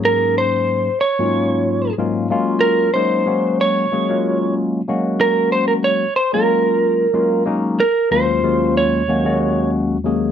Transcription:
X:1
M:4/4
L:1/16
Q:"Swing 16ths" 1/4=93
K:Gblyd
V:1 name="Lead electric guitar"
B2 c4 d6 z4 | B2 c4 d6 z4 | B2 c B d2 c B6- B z2 | B2 c4 d6 z4 |]
V:2 name="Tine electric piano"
[A,,G,B,DEA]4- [A,,G,B,DEA] z2 [A,,G,B,DEF]4 z [A,,G,B,DEF]2 [G,A,B,DF]2- | [G,A,B,DF]2 [G,A,B,DE]2 [G,A,B,DG]4 [G,A,B,DA] [G,A,B,DF]4 z [G,A,B,DG]2- | [G,A,B,DG]4- [G,A,B,DG] z2 [G,A,B,DF]4 z [G,A,B,DF]2 [G,A,B,DE]2 | z2 [E,,G,A,B,DF]2 [E,,G,A,B,DF]4 [E,,G,A,B,DG] [E,,G,A,B,DG]4 z [E,,G,A,B,DA]2 |]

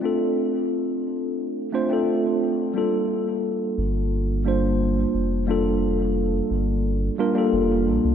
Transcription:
X:1
M:4/4
L:1/16
Q:1/4=88
K:Gm
V:1 name="Tine electric piano"
[A,CDFA]8- [A,CDFA]2 [A,CDFc] [A,CDFA]4- [A,CDFA] | [G,B,DFA]8- [G,B,DFA]2 [G,B,DFc]6 | [G,B,DFA]8- [G,B,DFA]2 [G,B,DFB] [G,B,DFA]4- [G,B,DFA] |]
V:2 name="Sub bass" clef=bass
z16 | z6 G,,,6- G,,, z F,,,2- | F,,,4- F,,, z G,,,3 z3 F,,,2 B,,, C,, |]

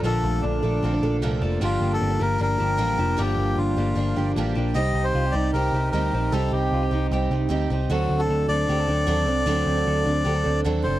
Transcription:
X:1
M:4/4
L:1/16
Q:1/4=153
K:Cdor
V:1 name="Melodica"
A4 D8 z4 | F3 A3 B2 B8 | G4 F8 z4 | e3 c3 d2 B4 B4 |
A2 G6 z8 | ^F3 A3 d8- d2- | d12 z2 c2 |]
V:2 name="Clean electric guitar"
[F,D]2 A,2 D2 A,2 C D F,2 A,2 F,2 | F,2 B,2 C D B,2 D2 F,2 B,2 F,2 | F,2 B,2 D2 B,2 D2 F,2 B,2 F,2 | G,2 E2 F G E2 G2 C2 E2 C2 |
G,2 E2 F G E2 G2 C2 E2 C2 | ^F,2 D2 A2 D2 G A C2 D2 C2 | ^F,2 C D A2 D2 G A C2 D2 C2 |]
V:3 name="Twelve-string acoustic guitar"
[B,,D,F,B,DA]6 [F,B,DA]2 [F,B,DA]2 [F,B,DA]2 [B,,D,F,B,DA]2 [F,B,DA]2 | [G,,D,F,B,DG]6 [F,B,DG]2 [F,B,DG]2 [F,B,DG]2 [G,,D,F,B,DG]2 [F,B,DG]2 | [G,,D,F,B,DG]6 [F,B,DG]2 [F,B,DG]2 [F,B,DG]2 [G,,D,F,B,DG]2 [F,B,DG]2 | [C,G,CEG]6 [CEG]2 [G,CEG]2 [CEG]2 [C,G,CEG]2 [CEG]2 |
[C,G,CEG]6 [CEG]2 [G,CEG]2 [CEG]2 [C,G,CEG]2 [CEG]2 | [D,^F,CDA]6 [CDA]2 [F,CDA]2 [CDA]2 [D,F,CDA]2 [CDA]2 | [D,^F,CDA]6 [CDA]2 [F,CDA]2 [CDA]2 [D,F,CDA]2 [CDA]2 |]
V:4 name="Picked electric bass" clef=bass
B,,,2 B,,,2 B,,,2 B,,,2 B,,,2 B,,,2 C,,2 F,,,2 | G,,,2 G,,,2 G,,,2 G,,,2 G,,,2 G,,,2 A,,,2 F,,,2 | G,,,2 G,,,2 G,,,2 G,,,2 G,,,2 G,,,2 A,,,2 B,,,2 | C,,2 C,,2 C,,2 C,,2 C,,2 C,,2 D,,2 B,,,2 |
C,,2 C,,2 C,,2 C,,2 C,,2 C,,2 D,,2 C,,2 | D,,2 D,,2 D,,2 D,,2 D,,2 D,,2 E,,2 C,,2 | D,,2 D,,2 D,,2 D,,2 D,,2 D,,2 E,,2 ^F,,,2 |]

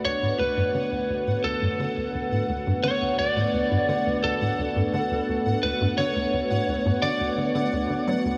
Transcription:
X:1
M:4/4
L:1/16
Q:1/4=86
K:D
V:1 name="Synth texture"
f16- | f16- | f16 |]
V:2 name="Lead electric guitar"
c2 B6 A6 z2 | c2 d6 A8 | B2 c6 d6 z2 |]
V:3 name="Analog synth pad"
[A,B,DFB]16- | [A,B,DFB]16- | [A,B,DFB]16 |]
V:4 name="Analog synth bass" clef=bass
D,, A,, D,, G,, D, D,, D,, A,, D,, G,, D, D,, D,, A,, D,, G,, | D, D,, D,, A,, D,, G,, D, D,, D,, A,, D,, G,, D, D,, D,, A,, | D,, G,, D, D,, D,, A,, D,, G,, D, D,, D, D, D,, D, F, D,, |]
V:5 name="Synth drone" clef=bass
D,,16- | D,,16- | D,,16 |]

